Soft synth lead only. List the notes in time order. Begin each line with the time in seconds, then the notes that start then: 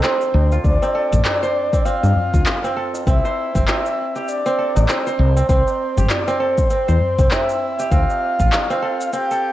0.03 C5
0.64 D5
1.85 F5
3.07 E5
3.68 E5
4.29 D5
4.89 C5
5.49 C5
6.10 D5
6.40 C5
6.70 C5
7.31 E5
7.90 F5
9.13 G5